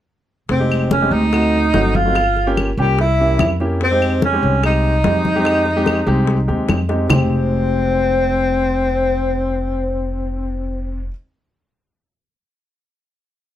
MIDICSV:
0, 0, Header, 1, 6, 480
1, 0, Start_track
1, 0, Key_signature, -4, "minor"
1, 0, Tempo, 412088
1, 589, Time_signature, 4, 2, 24, 8
1, 15784, End_track
2, 0, Start_track
2, 0, Title_t, "Soft synth lead"
2, 0, Program_c, 0, 80
2, 591, Note_on_c, 0, 72, 74
2, 1037, Note_off_c, 0, 72, 0
2, 1073, Note_on_c, 0, 73, 73
2, 1323, Note_on_c, 0, 75, 84
2, 1341, Note_off_c, 0, 73, 0
2, 2297, Note_on_c, 0, 77, 86
2, 2314, Note_off_c, 0, 75, 0
2, 3007, Note_off_c, 0, 77, 0
2, 3253, Note_on_c, 0, 79, 83
2, 3469, Note_off_c, 0, 79, 0
2, 3498, Note_on_c, 0, 76, 88
2, 4163, Note_off_c, 0, 76, 0
2, 4467, Note_on_c, 0, 72, 79
2, 4901, Note_off_c, 0, 72, 0
2, 4942, Note_on_c, 0, 73, 82
2, 5378, Note_off_c, 0, 73, 0
2, 5421, Note_on_c, 0, 75, 78
2, 7763, Note_off_c, 0, 75, 0
2, 8275, Note_on_c, 0, 72, 75
2, 12917, Note_off_c, 0, 72, 0
2, 15784, End_track
3, 0, Start_track
3, 0, Title_t, "Grand piano"
3, 0, Program_c, 1, 0
3, 695, Note_on_c, 1, 56, 75
3, 699, Note_on_c, 1, 60, 69
3, 702, Note_on_c, 1, 63, 67
3, 705, Note_on_c, 1, 67, 85
3, 1039, Note_off_c, 1, 56, 0
3, 1041, Note_off_c, 1, 60, 0
3, 1042, Note_off_c, 1, 63, 0
3, 1044, Note_off_c, 1, 67, 0
3, 1184, Note_on_c, 1, 56, 77
3, 1187, Note_on_c, 1, 60, 70
3, 1188, Note_on_c, 1, 63, 73
3, 1189, Note_on_c, 1, 67, 87
3, 1440, Note_off_c, 1, 56, 0
3, 1442, Note_off_c, 1, 60, 0
3, 1442, Note_off_c, 1, 63, 0
3, 1443, Note_off_c, 1, 67, 0
3, 1543, Note_on_c, 1, 57, 69
3, 1544, Note_on_c, 1, 60, 67
3, 1548, Note_on_c, 1, 63, 71
3, 1553, Note_on_c, 1, 66, 81
3, 1884, Note_off_c, 1, 57, 0
3, 1885, Note_off_c, 1, 60, 0
3, 1887, Note_off_c, 1, 63, 0
3, 1889, Note_off_c, 1, 66, 0
3, 2021, Note_on_c, 1, 57, 83
3, 2027, Note_on_c, 1, 60, 73
3, 2031, Note_on_c, 1, 63, 80
3, 2034, Note_on_c, 1, 66, 92
3, 2280, Note_off_c, 1, 57, 0
3, 2283, Note_off_c, 1, 60, 0
3, 2285, Note_off_c, 1, 63, 0
3, 2286, Note_off_c, 1, 66, 0
3, 2385, Note_on_c, 1, 57, 74
3, 2391, Note_on_c, 1, 60, 72
3, 2394, Note_on_c, 1, 63, 66
3, 2399, Note_on_c, 1, 66, 79
3, 2510, Note_off_c, 1, 57, 0
3, 2513, Note_off_c, 1, 60, 0
3, 2515, Note_off_c, 1, 63, 0
3, 2517, Note_off_c, 1, 66, 0
3, 2874, Note_on_c, 1, 58, 94
3, 2876, Note_on_c, 1, 61, 95
3, 2878, Note_on_c, 1, 65, 84
3, 2879, Note_on_c, 1, 67, 104
3, 3127, Note_off_c, 1, 58, 0
3, 3128, Note_off_c, 1, 61, 0
3, 3129, Note_off_c, 1, 65, 0
3, 3130, Note_off_c, 1, 67, 0
3, 3241, Note_on_c, 1, 61, 77
3, 3242, Note_on_c, 1, 58, 83
3, 3244, Note_on_c, 1, 65, 73
3, 3246, Note_on_c, 1, 67, 92
3, 3479, Note_off_c, 1, 61, 0
3, 3480, Note_off_c, 1, 58, 0
3, 3481, Note_off_c, 1, 65, 0
3, 3482, Note_off_c, 1, 67, 0
3, 3726, Note_on_c, 1, 58, 73
3, 3730, Note_on_c, 1, 61, 67
3, 3730, Note_on_c, 1, 64, 67
3, 3736, Note_on_c, 1, 67, 78
3, 4058, Note_off_c, 1, 58, 0
3, 4060, Note_off_c, 1, 61, 0
3, 4060, Note_off_c, 1, 64, 0
3, 4063, Note_off_c, 1, 67, 0
3, 4196, Note_on_c, 1, 58, 88
3, 4198, Note_on_c, 1, 61, 78
3, 4205, Note_on_c, 1, 64, 75
3, 4207, Note_on_c, 1, 67, 87
3, 4438, Note_off_c, 1, 58, 0
3, 4439, Note_off_c, 1, 61, 0
3, 4442, Note_off_c, 1, 64, 0
3, 4443, Note_off_c, 1, 67, 0
3, 4557, Note_on_c, 1, 56, 73
3, 4557, Note_on_c, 1, 60, 68
3, 4562, Note_on_c, 1, 63, 74
3, 4566, Note_on_c, 1, 67, 88
3, 4895, Note_off_c, 1, 56, 0
3, 4895, Note_off_c, 1, 60, 0
3, 4897, Note_off_c, 1, 63, 0
3, 4899, Note_off_c, 1, 67, 0
3, 5039, Note_on_c, 1, 56, 82
3, 5043, Note_on_c, 1, 60, 70
3, 5046, Note_on_c, 1, 63, 77
3, 5048, Note_on_c, 1, 67, 90
3, 5292, Note_off_c, 1, 56, 0
3, 5294, Note_off_c, 1, 60, 0
3, 5295, Note_off_c, 1, 63, 0
3, 5296, Note_off_c, 1, 67, 0
3, 5403, Note_on_c, 1, 56, 70
3, 5410, Note_on_c, 1, 60, 68
3, 5411, Note_on_c, 1, 63, 66
3, 5418, Note_on_c, 1, 67, 82
3, 5738, Note_off_c, 1, 56, 0
3, 5741, Note_off_c, 1, 60, 0
3, 5742, Note_off_c, 1, 63, 0
3, 5745, Note_off_c, 1, 67, 0
3, 5885, Note_on_c, 1, 56, 76
3, 5890, Note_on_c, 1, 60, 65
3, 5893, Note_on_c, 1, 63, 60
3, 5893, Note_on_c, 1, 67, 78
3, 6135, Note_off_c, 1, 56, 0
3, 6137, Note_off_c, 1, 60, 0
3, 6139, Note_off_c, 1, 63, 0
3, 6139, Note_off_c, 1, 67, 0
3, 6235, Note_on_c, 1, 60, 80
3, 6236, Note_on_c, 1, 56, 87
3, 6244, Note_on_c, 1, 63, 77
3, 6244, Note_on_c, 1, 67, 101
3, 6574, Note_off_c, 1, 56, 0
3, 6574, Note_off_c, 1, 60, 0
3, 6578, Note_off_c, 1, 63, 0
3, 6578, Note_off_c, 1, 67, 0
3, 6711, Note_on_c, 1, 56, 92
3, 6716, Note_on_c, 1, 63, 87
3, 6717, Note_on_c, 1, 60, 82
3, 6718, Note_on_c, 1, 67, 108
3, 6967, Note_off_c, 1, 56, 0
3, 6970, Note_off_c, 1, 60, 0
3, 6970, Note_off_c, 1, 63, 0
3, 6971, Note_off_c, 1, 67, 0
3, 7063, Note_on_c, 1, 56, 100
3, 7068, Note_on_c, 1, 60, 91
3, 7074, Note_on_c, 1, 63, 88
3, 7076, Note_on_c, 1, 67, 106
3, 7407, Note_off_c, 1, 56, 0
3, 7410, Note_off_c, 1, 60, 0
3, 7413, Note_off_c, 1, 63, 0
3, 7414, Note_off_c, 1, 67, 0
3, 7545, Note_on_c, 1, 60, 81
3, 7546, Note_on_c, 1, 56, 86
3, 7549, Note_on_c, 1, 63, 76
3, 7550, Note_on_c, 1, 67, 93
3, 7888, Note_off_c, 1, 56, 0
3, 7888, Note_off_c, 1, 60, 0
3, 7890, Note_off_c, 1, 63, 0
3, 7891, Note_off_c, 1, 67, 0
3, 8022, Note_on_c, 1, 56, 80
3, 8026, Note_on_c, 1, 60, 73
3, 8030, Note_on_c, 1, 63, 75
3, 8034, Note_on_c, 1, 67, 85
3, 8226, Note_off_c, 1, 56, 0
3, 8244, Note_on_c, 1, 56, 74
3, 8247, Note_off_c, 1, 60, 0
3, 8260, Note_off_c, 1, 63, 0
3, 8264, Note_on_c, 1, 60, 63
3, 8276, Note_off_c, 1, 67, 0
3, 8278, Note_on_c, 1, 63, 65
3, 8295, Note_on_c, 1, 67, 75
3, 12886, Note_off_c, 1, 56, 0
3, 12906, Note_off_c, 1, 60, 0
3, 12920, Note_off_c, 1, 63, 0
3, 12938, Note_off_c, 1, 67, 0
3, 15784, End_track
4, 0, Start_track
4, 0, Title_t, "Tenor saxophone"
4, 0, Program_c, 2, 66
4, 596, Note_on_c, 2, 60, 83
4, 1040, Note_off_c, 2, 60, 0
4, 1074, Note_on_c, 2, 61, 86
4, 1311, Note_on_c, 2, 63, 92
4, 1329, Note_off_c, 2, 61, 0
4, 2282, Note_on_c, 2, 65, 106
4, 2299, Note_off_c, 2, 63, 0
4, 3000, Note_off_c, 2, 65, 0
4, 3271, Note_on_c, 2, 67, 95
4, 3479, Note_off_c, 2, 67, 0
4, 3503, Note_on_c, 2, 64, 102
4, 4165, Note_off_c, 2, 64, 0
4, 4466, Note_on_c, 2, 60, 92
4, 4901, Note_off_c, 2, 60, 0
4, 4947, Note_on_c, 2, 61, 86
4, 5381, Note_off_c, 2, 61, 0
4, 5422, Note_on_c, 2, 63, 97
4, 7764, Note_off_c, 2, 63, 0
4, 8298, Note_on_c, 2, 60, 98
4, 12940, Note_off_c, 2, 60, 0
4, 15784, End_track
5, 0, Start_track
5, 0, Title_t, "Upright bass"
5, 0, Program_c, 3, 32
5, 574, Note_on_c, 3, 29, 77
5, 1257, Note_off_c, 3, 29, 0
5, 1294, Note_on_c, 3, 38, 84
5, 1978, Note_off_c, 3, 38, 0
5, 2031, Note_on_c, 3, 31, 73
5, 3165, Note_off_c, 3, 31, 0
5, 3231, Note_on_c, 3, 36, 86
5, 3909, Note_off_c, 3, 36, 0
5, 3958, Note_on_c, 3, 41, 82
5, 5089, Note_off_c, 3, 41, 0
5, 5156, Note_on_c, 3, 36, 85
5, 5832, Note_off_c, 3, 36, 0
5, 5874, Note_on_c, 3, 41, 86
5, 7006, Note_off_c, 3, 41, 0
5, 7066, Note_on_c, 3, 36, 87
5, 7519, Note_off_c, 3, 36, 0
5, 7558, Note_on_c, 3, 39, 67
5, 7782, Note_off_c, 3, 39, 0
5, 7795, Note_on_c, 3, 41, 80
5, 8220, Note_off_c, 3, 41, 0
5, 8269, Note_on_c, 3, 29, 87
5, 12911, Note_off_c, 3, 29, 0
5, 15784, End_track
6, 0, Start_track
6, 0, Title_t, "Drums"
6, 573, Note_on_c, 9, 60, 65
6, 584, Note_on_c, 9, 63, 35
6, 689, Note_off_c, 9, 60, 0
6, 701, Note_off_c, 9, 63, 0
6, 820, Note_on_c, 9, 63, 34
6, 834, Note_on_c, 9, 75, 59
6, 937, Note_off_c, 9, 63, 0
6, 950, Note_off_c, 9, 75, 0
6, 1060, Note_on_c, 9, 63, 91
6, 1064, Note_on_c, 9, 60, 58
6, 1176, Note_off_c, 9, 63, 0
6, 1180, Note_off_c, 9, 60, 0
6, 1315, Note_on_c, 9, 63, 33
6, 1432, Note_off_c, 9, 63, 0
6, 1547, Note_on_c, 9, 60, 66
6, 1553, Note_on_c, 9, 63, 32
6, 1560, Note_on_c, 9, 75, 57
6, 1663, Note_off_c, 9, 60, 0
6, 1670, Note_off_c, 9, 63, 0
6, 1676, Note_off_c, 9, 75, 0
6, 1796, Note_on_c, 9, 63, 31
6, 1912, Note_off_c, 9, 63, 0
6, 2025, Note_on_c, 9, 60, 67
6, 2025, Note_on_c, 9, 61, 80
6, 2029, Note_on_c, 9, 63, 77
6, 2141, Note_off_c, 9, 60, 0
6, 2141, Note_off_c, 9, 61, 0
6, 2145, Note_off_c, 9, 63, 0
6, 2270, Note_on_c, 9, 63, 84
6, 2387, Note_off_c, 9, 63, 0
6, 2509, Note_on_c, 9, 60, 61
6, 2514, Note_on_c, 9, 63, 33
6, 2516, Note_on_c, 9, 75, 64
6, 2626, Note_off_c, 9, 60, 0
6, 2630, Note_off_c, 9, 63, 0
6, 2632, Note_off_c, 9, 75, 0
6, 2753, Note_on_c, 9, 60, 34
6, 2759, Note_on_c, 9, 63, 32
6, 2869, Note_off_c, 9, 60, 0
6, 2875, Note_off_c, 9, 63, 0
6, 2998, Note_on_c, 9, 75, 67
6, 2999, Note_on_c, 9, 60, 57
6, 3000, Note_on_c, 9, 63, 56
6, 3115, Note_off_c, 9, 60, 0
6, 3115, Note_off_c, 9, 75, 0
6, 3116, Note_off_c, 9, 63, 0
6, 3241, Note_on_c, 9, 60, 33
6, 3357, Note_off_c, 9, 60, 0
6, 3478, Note_on_c, 9, 60, 66
6, 3478, Note_on_c, 9, 63, 34
6, 3595, Note_off_c, 9, 60, 0
6, 3595, Note_off_c, 9, 63, 0
6, 3713, Note_on_c, 9, 63, 33
6, 3829, Note_off_c, 9, 63, 0
6, 3952, Note_on_c, 9, 60, 64
6, 3952, Note_on_c, 9, 61, 84
6, 3954, Note_on_c, 9, 63, 77
6, 3966, Note_on_c, 9, 75, 66
6, 4069, Note_off_c, 9, 60, 0
6, 4069, Note_off_c, 9, 61, 0
6, 4071, Note_off_c, 9, 63, 0
6, 4082, Note_off_c, 9, 75, 0
6, 4196, Note_on_c, 9, 60, 32
6, 4312, Note_off_c, 9, 60, 0
6, 4436, Note_on_c, 9, 60, 65
6, 4442, Note_on_c, 9, 63, 34
6, 4553, Note_off_c, 9, 60, 0
6, 4559, Note_off_c, 9, 63, 0
6, 4683, Note_on_c, 9, 63, 34
6, 4684, Note_on_c, 9, 75, 58
6, 4799, Note_off_c, 9, 63, 0
6, 4800, Note_off_c, 9, 75, 0
6, 4917, Note_on_c, 9, 60, 54
6, 4919, Note_on_c, 9, 63, 89
6, 5033, Note_off_c, 9, 60, 0
6, 5035, Note_off_c, 9, 63, 0
6, 5167, Note_on_c, 9, 63, 32
6, 5283, Note_off_c, 9, 63, 0
6, 5398, Note_on_c, 9, 60, 66
6, 5401, Note_on_c, 9, 75, 62
6, 5402, Note_on_c, 9, 63, 35
6, 5515, Note_off_c, 9, 60, 0
6, 5517, Note_off_c, 9, 75, 0
6, 5518, Note_off_c, 9, 63, 0
6, 5644, Note_on_c, 9, 63, 31
6, 5760, Note_off_c, 9, 63, 0
6, 5873, Note_on_c, 9, 60, 65
6, 5873, Note_on_c, 9, 61, 77
6, 5874, Note_on_c, 9, 63, 81
6, 5990, Note_off_c, 9, 60, 0
6, 5990, Note_off_c, 9, 61, 0
6, 5990, Note_off_c, 9, 63, 0
6, 6115, Note_on_c, 9, 63, 75
6, 6231, Note_off_c, 9, 63, 0
6, 6349, Note_on_c, 9, 60, 67
6, 6353, Note_on_c, 9, 63, 37
6, 6365, Note_on_c, 9, 75, 61
6, 6466, Note_off_c, 9, 60, 0
6, 6470, Note_off_c, 9, 63, 0
6, 6482, Note_off_c, 9, 75, 0
6, 6587, Note_on_c, 9, 60, 34
6, 6594, Note_on_c, 9, 63, 31
6, 6703, Note_off_c, 9, 60, 0
6, 6711, Note_off_c, 9, 63, 0
6, 6827, Note_on_c, 9, 60, 57
6, 6832, Note_on_c, 9, 63, 56
6, 6842, Note_on_c, 9, 75, 63
6, 6943, Note_off_c, 9, 60, 0
6, 6948, Note_off_c, 9, 63, 0
6, 6959, Note_off_c, 9, 75, 0
6, 7066, Note_on_c, 9, 60, 31
6, 7183, Note_off_c, 9, 60, 0
6, 7309, Note_on_c, 9, 60, 66
6, 7313, Note_on_c, 9, 63, 36
6, 7425, Note_off_c, 9, 60, 0
6, 7430, Note_off_c, 9, 63, 0
6, 7558, Note_on_c, 9, 63, 33
6, 7674, Note_off_c, 9, 63, 0
6, 7788, Note_on_c, 9, 60, 65
6, 7788, Note_on_c, 9, 61, 76
6, 7796, Note_on_c, 9, 63, 76
6, 7799, Note_on_c, 9, 75, 65
6, 7904, Note_off_c, 9, 60, 0
6, 7904, Note_off_c, 9, 61, 0
6, 7912, Note_off_c, 9, 63, 0
6, 7916, Note_off_c, 9, 75, 0
6, 8027, Note_on_c, 9, 60, 68
6, 8143, Note_off_c, 9, 60, 0
6, 8265, Note_on_c, 9, 61, 89
6, 8271, Note_on_c, 9, 64, 97
6, 8274, Note_on_c, 9, 75, 101
6, 8382, Note_off_c, 9, 61, 0
6, 8387, Note_off_c, 9, 64, 0
6, 8390, Note_off_c, 9, 75, 0
6, 15784, End_track
0, 0, End_of_file